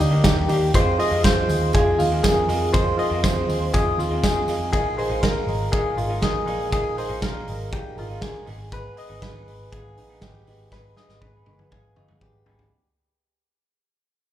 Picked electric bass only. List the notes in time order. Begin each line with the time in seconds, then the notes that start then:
0.00 D2
0.24 D#2
0.49 D#2
0.74 F2
1.12 F2
1.24 F2
1.49 D#2
1.75 F2
1.99 D#2
2.24 F2
2.49 F2
2.74 F2
3.11 F2
3.24 F2
3.48 D#2
3.74 F2
3.98 D#2
4.24 F2
4.48 F2
4.73 A#1
5.10 A#1
5.23 A#1
5.47 G#1
5.73 A#1
5.97 G#1
6.22 A#1
6.47 A#1
6.72 A#1
7.10 A#1
7.22 A#1
7.48 G#1
7.72 A#1
7.97 G#1
8.22 A#1
8.47 G#1
9.10 G#1
9.22 G#1
9.48 G#1
9.72 G#1
9.97 A#1
10.22 G#1
10.47 G#1
10.72 G#1
11.09 G#1
11.22 G#1
11.46 G1
11.72 G#1
11.96 G1
12.21 G#1
12.47 G#1